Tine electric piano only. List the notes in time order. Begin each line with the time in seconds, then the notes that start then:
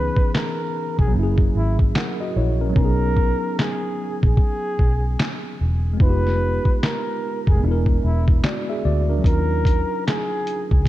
Already playing: E3 B3 C#4 D#4 G#4
1.08 F#3 A#3
1.15 C#4 E4
1.23 G#4
1.96 A#4 F#5
2.20 F#4 D#5
2.37 E4 C#5
2.61 C#4 A#4
2.69 F#3 B3
2.77 C#4 D#4
2.84 G#4
5.93 G#3 B3
6.01 D#4 F4
6.09 G4
7.56 G#3 B3
7.64 D4 E4
7.71 A#4
8.45 F#4 D5
8.69 G#4 E5
8.85 F#4 D5
9.10 D4 A#4
9.18 F#3 C#4
9.26 D#4 F4
9.33 A#4